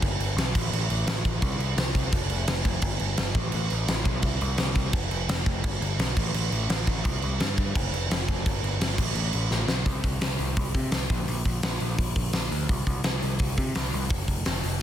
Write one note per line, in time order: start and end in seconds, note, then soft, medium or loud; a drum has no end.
0.02 0.18 G1 medium
0.02 kick loud
0.02 crash medium
0.19 0.35 G1 medium
0.19 crash medium
0.36 0.52 B1 loud
0.36 snare loud
0.36 crash medium
0.55 0.71 A1 loud
0.55 kick loud
0.55 crash loud
0.72 0.88 A1 medium
0.72 crash medium
0.90 1.06 A1 loud
0.90 crash medium
1.07 1.23 A1 loud
1.07 snare loud
1.07 crash medium
1.25 1.41 A1 medium
1.25 kick medium
1.25 crash medium
1.42 1.58 C2 loud
1.42 kick loud
1.42 crash medium
1.58 1.75 C2 medium
1.58 crash medium
1.77 2.09 C2 medium
1.77 snare loud
1.77 crash medium
1.95 kick medium
1.95 crash medium
2.12 2.28 F1 medium
2.12 kick loud
2.12 crash medium
2.30 2.46 F1 medium
2.30 crash medium
2.47 2.63 F1 medium
2.47 snare loud
2.47 crash loud
2.65 2.81 F1 medium
2.65 kick loud
2.65 crash medium
2.82 2.98 G1 loud
2.82 kick loud
2.82 crash medium
3.00 3.16 G1 medium
3.00 crash medium
3.17 3.34 G1 loud
3.17 snare loud
3.17 crash medium
3.35 3.51 A1 medium
3.35 kick loud
3.35 crash medium
3.52 3.69 A1 medium
3.52 crash medium
3.70 3.87 A1 medium
3.70 crash medium
3.88 4.04 A1 medium
3.88 snare loud
3.88 crash medium
4.05 4.23 B1 medium
4.05 kick medium
4.05 crash medium
4.22 4.39 C2 medium
4.22 kick loud
4.22 crash medium
4.41 4.57 C2 medium
4.41 crash medium
4.58 4.90 C2 medium
4.58 snare loud
4.58 crash medium
4.75 kick medium
4.75 crash medium
4.93 5.09 F1 medium
4.93 kick loud
4.93 crash medium
5.11 5.27 F1 medium
5.11 crash medium
5.29 5.44 F1 loud
5.29 snare loud
5.29 crash medium
5.46 5.62 F1 loud
5.46 kick loud
5.46 crash medium
5.64 5.79 G1 loud
5.64 kick loud
5.64 crash medium
5.80 5.97 G1 medium
5.80 crash medium
5.99 6.15 B1 medium
5.99 snare loud
5.99 crash loud
6.17 6.33 A1 medium
6.17 kick loud
6.17 crash loud
6.34 6.50 A1 medium
6.34 crash medium
6.51 6.67 A1 medium
6.51 crash medium
6.69 6.85 A1 loud
6.69 snare loud
6.69 crash medium
6.87 7.03 A1 medium
6.87 kick loud
6.87 crash medium
7.05 7.21 C2 medium
7.05 kick loud
7.05 crash medium
7.22 7.38 C2 medium
7.22 crash medium
7.40 7.72 G2 medium
7.40 snare loud
7.40 crash medium
7.58 kick medium
7.58 crash medium
7.75 7.91 F1 loud
7.75 kick loud
7.75 crash medium
7.93 8.08 F1 medium
7.93 crash medium
8.10 8.26 F1 loud
8.10 snare loud
8.10 crash medium
8.28 8.44 F1 loud
8.28 kick medium
8.28 crash medium
8.46 8.62 G1 loud
8.46 kick loud
8.46 crash medium
8.63 8.79 G1 medium
8.63 crash medium
8.80 8.96 G1 medium
8.80 snare loud
8.80 crash medium
8.98 9.14 A1 medium
8.98 kick loud
8.98 crash loud
9.15 9.31 A1 loud
9.15 crash medium
9.33 9.50 A1 medium
9.33 crash medium
9.51 9.67 A1 loud
9.51 snare medium
9.68 9.84 B1 medium
9.68 snare loud
9.86 10.01 C2 medium
9.86 kick medium
9.86 open hi-hat medium
10.04 10.19 C2 medium
10.04 kick medium
10.04 open hi-hat soft
10.21 10.36 C2 medium
10.21 snare loud
10.21 open hi-hat medium
10.39 10.54 C2 medium
10.39 open hi-hat medium
10.57 10.72 C2 medium
10.57 kick loud
10.57 open hi-hat medium
10.75 10.89 C3 medium
10.75 kick medium
10.75 open hi-hat medium
10.91 11.06 C2 medium
10.91 snare loud
10.91 open hi-hat medium
11.10 11.25 A#1 medium
11.10 kick loud
11.10 open hi-hat medium
11.27 11.42 A#1 medium
11.27 open hi-hat medium
11.45 11.60 A#1 medium
11.45 kick medium
11.45 open hi-hat medium
11.63 11.78 A#1 medium
11.63 snare loud
11.63 open hi-hat medium
11.80 11.96 A#1 medium
11.80 open hi-hat medium
11.98 12.13 A#1 medium
11.98 kick loud
11.98 open hi-hat medium
12.15 12.31 A#1 medium
12.15 kick medium
12.15 open hi-hat medium
12.33 12.48 A#1 medium
12.33 snare loud
12.33 open hi-hat medium
12.51 12.66 D2 medium
12.51 open hi-hat medium
12.69 12.84 C2 medium
12.69 kick loud
12.69 open hi-hat medium
12.87 13.01 C2 medium
12.87 kick medium
12.87 open hi-hat soft
13.04 13.20 C2 medium
13.04 snare loud
13.04 open hi-hat medium
13.22 13.37 C2 medium
13.22 open hi-hat medium
13.39 13.54 C2 medium
13.39 kick loud
13.39 open hi-hat medium
13.58 13.72 C3 medium
13.58 kick medium
13.58 open hi-hat medium
13.75 13.90 C2 medium
13.75 snare loud
13.75 open hi-hat medium
13.93 14.08 C2 medium
13.93 open hi-hat medium
14.10 14.25 F1 medium
14.10 kick loud
14.10 open hi-hat medium
14.28 14.42 F1 medium
14.28 kick medium
14.28 open hi-hat medium
14.46 14.61 F1 medium
14.46 snare loud
14.46 open hi-hat medium
14.64 14.78 F1 medium
14.64 open hi-hat medium